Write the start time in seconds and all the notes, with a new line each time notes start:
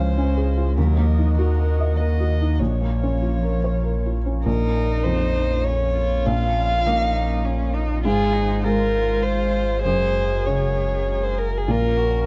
Already playing: C#2 F3 G#3 C#4 F4 G#4 C5 F5
0.16 G#3 C#4
0.37 G#4
0.57 F4
0.76 D#2 F#3 A#3 A#4 D#5 F#5
0.97 A#3
1.06 F3
1.18 D#4
1.34 D#3 A#4
1.39 F#4
1.60 A#4
1.80 D#5
1.97 D#3 A#4 D#5
2.20 F#4
2.41 D#4
2.59 A#1 F3 F4 C#5
2.81 A#3
3.03 C#4
3.22 F4
3.43 A#4
3.64 C#5
3.84 A#4
4.06 F4
4.26 C#4
4.44 A#1 A#3 C#4 D#4 F4 A#4
5.04 F2 C5
5.64 C#4 C#5
5.97 F4
6.26 A#1 F5
6.86 A#3 D#4
7.45 C#4
7.74 D#4
8.03 G#1 G#2 G#3 F4 G#4 C5
8.33 D#4
8.64 G#3 F4 A#4
9.23 C5
9.84 F#1 F#2 F#4 G#4 A#4 C5
10.46 C#3 C#5
11.23 C5
11.38 A#4
11.57 G#4
11.66 A#1 A#2 C#4 F4 F5
11.71 A#4
11.97 F#4